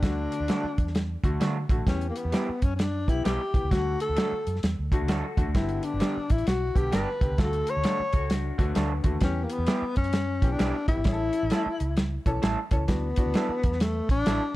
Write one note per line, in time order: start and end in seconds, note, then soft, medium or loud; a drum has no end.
0.00 0.26 D2 loud
0.00 0.59 D3 medium
0.00 0.59 A3 medium
0.00 1.22 D4 medium
0.00 kick loud
0.00 snare loud
0.00 closed hi-hat medium
0.04 0.59 F#4 medium
0.32 closed hi-hat medium
0.40 0.47 D2 medium
0.48 0.64 F#3 medium
0.48 0.64 A3 medium
0.48 0.65 D4 medium
0.48 0.65 F#4 medium
0.48 snare loud
0.48 closed hi-hat medium
0.64 muted fingered electric bass stroke soft
0.78 1.15 E2 medium
0.78 kick medium
0.78 closed hi-hat medium
0.87 snare soft
0.95 snare loud
0.95 closed hi-hat medium
1.23 1.37 D2 medium
1.23 1.45 D3 medium
1.23 1.46 A3 medium
1.23 1.46 F#4 medium
1.23 kick medium
1.23 closed hi-hat medium
1.40 1.64 D3 medium
1.40 1.56 F#3 medium
1.40 1.57 A3 medium
1.40 1.57 D4 medium
1.40 1.57 F#4 medium
1.40 snare loud
1.40 closed hi-hat medium
1.69 1.83 A1 medium
1.69 1.80 D3 medium
1.69 1.80 A3 medium
1.69 1.80 F#4 medium
1.69 kick medium
1.69 closed hi-hat medium
1.86 2.10 E2 medium
1.86 2.42 E3 medium
1.86 2.43 B3 medium
1.86 2.07 C#4 medium
1.86 2.43 G4 medium
1.86 kick loud
1.86 snare loud
1.86 closed hi-hat medium
2.01 closed hi-hat soft
2.10 2.18 A#3 medium
2.16 2.65 B3 medium
2.16 closed hi-hat medium
2.25 2.32 E2 medium
2.32 2.48 G3 medium
2.32 2.49 B3 medium
2.32 2.49 E4 medium
2.32 2.49 G4 medium
2.32 snare loud
2.32 closed hi-hat medium
2.49 muted fingered electric bass stroke soft
2.62 3.09 F#2 medium
2.62 2.76 C#4 medium
2.62 kick medium
2.62 closed hi-hat medium
2.76 2.81 C#4 medium
2.76 3.11 D4 medium
2.76 snare loud
2.76 closed hi-hat medium
3.08 3.22 B1 medium
3.08 3.30 E3 medium
3.08 3.30 B3 medium
3.08 3.25 E4 medium
3.08 3.30 G4 medium
3.08 kick medium
3.08 closed hi-hat medium
3.24 3.37 B1 medium
3.24 3.40 G3 medium
3.24 3.41 B3 medium
3.24 3.41 E4 medium
3.24 3.73 G4 medium
3.24 3.41 G4 medium
3.24 snare loud
3.24 closed hi-hat medium
3.54 3.61 C2 medium
3.54 3.64 E3 medium
3.54 3.64 B3 medium
3.54 3.65 G4 medium
3.54 kick medium
3.54 closed hi-hat medium
3.63 3.70 C#2 medium
3.71 3.95 D2 medium
3.71 4.26 D3 medium
3.71 4.27 A3 medium
3.71 4.01 F#4 loud
3.71 4.27 F#4 medium
3.71 kick loud
3.71 snare loud
3.71 closed hi-hat medium
4.00 4.60 A4 loud
4.00 closed hi-hat medium
4.09 4.16 D2 loud
4.16 4.32 F#3 medium
4.16 4.32 A3 medium
4.16 4.33 D4 medium
4.16 4.33 F#4 medium
4.16 snare loud
4.16 closed hi-hat medium
4.32 muted fingered electric bass stroke soft
4.47 4.60 F#2 medium
4.47 closed hi-hat medium
4.56 snare soft
4.63 4.75 E2 medium
4.63 snare loud
4.63 closed hi-hat medium
4.79 4.90 D2 medium
4.92 5.14 D3 medium
4.92 5.14 A3 medium
4.92 5.09 D4 medium
4.92 5.08 F#4 medium
4.92 5.14 F#4 medium
4.92 kick medium
4.92 closed hi-hat medium
5.02 5.08 C#2 medium
5.08 5.21 D2 medium
5.08 5.24 F#3 medium
5.08 5.24 A3 medium
5.08 5.25 D4 medium
5.08 5.37 F#4 medium
5.08 5.25 F#4 loud
5.08 5.37 A4 medium
5.08 snare loud
5.08 closed hi-hat medium
5.37 5.44 E2 medium
5.37 5.48 D3 medium
5.37 5.47 A3 medium
5.37 5.82 D4 medium
5.37 5.48 F#4 medium
5.37 5.82 F#4 medium
5.37 kick medium
5.37 closed hi-hat medium
5.48 5.54 D2 medium
5.54 5.78 G1 medium
5.54 6.10 D3 medium
5.54 6.10 B3 medium
5.54 5.86 E4 medium
5.54 6.10 G4 medium
5.54 kick loud
5.54 snare loud
5.54 closed hi-hat medium
5.69 closed hi-hat soft
5.83 6.34 D4 medium
5.83 closed hi-hat medium
5.94 6.00 G1 loud
6.00 6.16 G3 medium
6.00 6.16 B3 medium
6.00 6.16 D4 medium
6.00 6.17 G4 medium
6.00 snare loud
6.00 closed hi-hat medium
6.17 muted fingered electric bass stroke soft
6.30 6.44 A1 medium
6.30 6.47 E4 medium
6.30 kick medium
6.30 closed hi-hat medium
6.38 closed hi-hat soft
6.47 6.70 B1 medium
6.47 6.79 F#4 medium
6.47 snare loud
6.47 closed hi-hat medium
6.75 6.89 B1 medium
6.75 6.97 D3 medium
6.75 6.97 B3 medium
6.75 6.97 G4 medium
6.75 6.94 G4 medium
6.75 kick medium
6.75 closed hi-hat medium
6.92 7.04 G1 medium
6.92 7.08 G3 medium
6.92 7.08 B3 medium
6.92 7.08 D4 medium
6.92 7.08 G4 loud
6.92 7.42 B4 medium
6.92 snare loud
6.92 closed hi-hat loud
7.21 7.28 C2 medium
7.21 7.31 D3 medium
7.21 7.31 B3 medium
7.21 7.32 G4 medium
7.21 kick medium
7.21 closed hi-hat medium
7.31 7.38 C#2 medium
7.38 7.62 D2 loud
7.38 7.93 D3 medium
7.38 7.93 A3 medium
7.38 7.45 F4 medium
7.38 7.71 A4 medium
7.38 kick loud
7.38 snare loud
7.38 closed hi-hat medium
7.43 7.96 F#4 medium
7.53 closed hi-hat soft
7.67 8.31 C#5 loud
7.67 closed hi-hat medium
7.77 7.83 D2 medium
7.84 8.00 F#3 medium
7.84 8.00 A3 medium
7.84 8.00 D4 medium
7.84 8.00 F#4 medium
7.84 snare loud
7.84 closed hi-hat medium
8.00 muted fingered electric bass stroke soft
8.13 8.50 C#2 medium
8.13 8.28 F#4 medium
8.13 8.29 A4 medium
8.13 kick medium
8.13 closed hi-hat medium
8.29 8.57 D4 medium
8.29 8.57 F#4 medium
8.29 snare loud
8.29 closed hi-hat medium
8.58 8.72 D2 medium
8.58 8.80 D3 medium
8.58 8.81 A3 medium
8.58 9.19 B3 medium
8.58 9.18 D4 medium
8.58 8.81 F#4 medium
8.58 kick medium
8.58 closed hi-hat medium
8.75 8.99 D2 medium
8.75 8.91 F#3 loud
8.75 8.92 A3 loud
8.75 8.92 D4 loud
8.75 8.92 F#4 medium
8.75 snare loud
8.75 closed hi-hat medium
9.04 9.18 D#2 medium
9.04 9.14 D3 medium
9.04 9.14 A3 medium
9.04 9.15 F#4 medium
9.04 kick medium
9.04 closed hi-hat medium
9.21 9.45 E2 loud
9.21 9.77 E3 medium
9.21 9.77 B3 medium
9.21 9.45 C#4 medium
9.21 9.78 G4 medium
9.21 kick loud
9.21 snare loud
9.21 closed hi-hat medium
9.44 9.53 A#3 medium
9.50 9.96 B3 medium
9.50 closed hi-hat medium
9.59 9.66 E2 medium
9.67 9.83 G3 medium
9.67 9.83 B3 medium
9.67 9.83 E4 medium
9.67 9.84 G4 medium
9.67 snare loud
9.67 closed hi-hat medium
9.82 muted fingered electric bass stroke medium
9.96 10.44 F#2 medium
9.96 10.54 C#4 loud
9.96 kick medium
9.96 closed hi-hat medium
10.04 closed hi-hat soft
10.13 snare loud
10.13 closed hi-hat medium
10.42 10.56 B1 medium
10.42 10.64 E3 medium
10.42 10.64 B3 medium
10.42 10.64 G4 medium
10.42 kick medium
10.42 closed hi-hat medium
10.52 10.88 D4 medium
10.59 10.71 B1 medium
10.59 10.75 G3 medium
10.59 10.75 B3 loud
10.59 10.75 E4 medium
10.59 10.75 G4 loud
10.59 snare loud
10.59 closed hi-hat medium
10.88 10.95 G1 medium
10.88 10.99 E3 medium
10.88 10.99 B3 medium
10.88 12.39 E4 loud
10.88 10.99 G4 medium
10.88 kick medium
10.88 closed hi-hat medium
10.97 11.04 G#1 medium
11.04 11.28 A1 medium
11.04 11.61 E3 medium
11.04 11.61 C#4 medium
11.04 11.13 G#4 medium
11.04 kick loud
11.04 snare loud
11.04 closed hi-hat medium
11.12 11.64 A4 medium
11.33 closed hi-hat medium
11.43 11.49 A1 medium
11.50 11.66 A3 medium
11.50 11.66 C#4 medium
11.50 11.67 E4 medium
11.50 11.67 A4 medium
11.50 snare loud
11.50 closed hi-hat medium
11.66 muted fingered electric bass stroke soft
11.80 12.17 C#2 medium
11.80 closed hi-hat medium
11.97 snare loud
11.97 closed hi-hat medium
12.25 12.39 B1 medium
12.25 12.47 E3 medium
12.25 12.48 C#4 medium
12.25 12.48 A4 medium
12.25 kick medium
12.25 closed hi-hat medium
12.42 12.55 A1 medium
12.42 12.58 A3 medium
12.42 12.58 C#4 medium
12.42 12.58 E4 medium
12.42 12.59 A4 loud
12.42 snare loud
12.42 closed hi-hat medium
12.71 12.85 C#2 medium
12.71 12.81 E3 medium
12.71 12.82 C#4 medium
12.71 12.82 A4 medium
12.71 kick loud
12.71 closed hi-hat medium
12.88 13.12 D2 medium
12.88 13.05 E3 medium
12.88 13.83 B3 medium
12.88 13.05 D4 medium
12.88 13.05 F#4 medium
12.88 kick loud
12.88 snare loud
12.88 closed hi-hat medium
13.16 13.69 E3 medium
13.16 13.69 D4 medium
13.16 13.69 F#4 medium
13.16 kick medium
13.16 closed hi-hat medium
13.26 13.33 D2 medium
13.34 13.50 F#3 medium
13.34 13.50 D4 medium
13.34 13.50 E4 medium
13.34 13.51 A4 medium
13.34 snare loud
13.34 closed hi-hat medium
13.49 muted fingered electric bass stroke soft
13.63 14.00 E2 medium
13.63 kick medium
13.63 closed hi-hat medium
13.72 snare soft
13.80 14.10 A3 medium
13.80 snare loud
13.80 closed hi-hat loud
14.09 14.22 A1 medium
14.09 14.56 D4 loud
14.09 kick medium
14.09 closed hi-hat medium
14.26 14.38 A1 medium
14.26 14.41 F#3 medium
14.26 14.41 D4 medium
14.26 14.42 E4 medium
14.26 14.42 A4 medium
14.26 snare loud
14.26 closed hi-hat medium